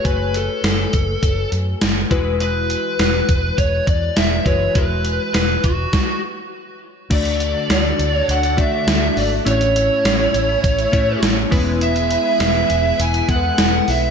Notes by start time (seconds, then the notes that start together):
Already playing: A3 F#4 G#4 B4
0.04 F#1 A3 F#4 B4 C#5 G#5, kick, closed hi-hat
0.34 A4, closed hi-hat
0.63 F#1, snare, closed hi-hat
0.93 F#1, kick, closed hi-hat
1.23 F#1, kick, closed hi-hat
1.52 F#2, closed hi-hat
1.81 F#1, snare, closed hi-hat
2.11 E1 E3 G#3 E4 F#4 B4, kick, closed hi-hat
2.40 B4, closed hi-hat
2.70 closed hi-hat
2.99 E1, snare, closed hi-hat
3.29 E1, kick, closed hi-hat
3.58 E1 C#5, kick, closed hi-hat
3.87 E2 D5, kick, closed hi-hat
4.17 E1 E5, snare, closed hi-hat
4.45 F#1 E3 G#3 E4 F#4 B4 C#5, kick, closed hi-hat
4.75 E1 G#3 E4 F#4 B4, kick, closed hi-hat
5.05 closed hi-hat
5.34 E1 B4, snare, closed hi-hat
5.64 E1 F#4, kick, closed hi-hat
5.93 kick, snare
7.10 D2 D3 A3 D4 F#4 A4 D5, kick, closed hi-hat, crash
7.25 closed hi-hat
7.40 closed hi-hat
7.70 D2 D5, snare, closed hi-hat
7.99 D2, closed hi-hat
8.15 C#5
8.28 D2 F#5, closed hi-hat
8.43 closed hi-hat
8.57 D3 A3 D4 F#4 D5 E5, kick, closed hi-hat
8.87 D2, snare, closed hi-hat
9.17 G#1 D5, open hi-hat
9.45 A1 A2 A3 C#4 E4 C#5, closed hi-hat
9.61 closed hi-hat
9.76 closed hi-hat
10.05 A1, snare, closed hi-hat
10.34 A1, closed hi-hat
10.64 A1, kick, closed hi-hat
10.79 closed hi-hat
10.92 A2 A3 C#4 E4 C#5, kick, closed hi-hat
11.22 A1, snare, closed hi-hat
11.51 E1 E3 G#3 B3 E4 G#4 B4, kick, open hi-hat
11.81 E5, closed hi-hat
11.96 closed hi-hat
12.11 closed hi-hat
12.40 E1 E5, snare, closed hi-hat
12.70 E1, closed hi-hat
12.99 E1 G#5, closed hi-hat
13.14 closed hi-hat
13.28 E2 G#3 B3 E4 A4 F#5, kick, closed hi-hat
13.36 B4
13.58 E1, snare, closed hi-hat
13.88 B1 E5, open hi-hat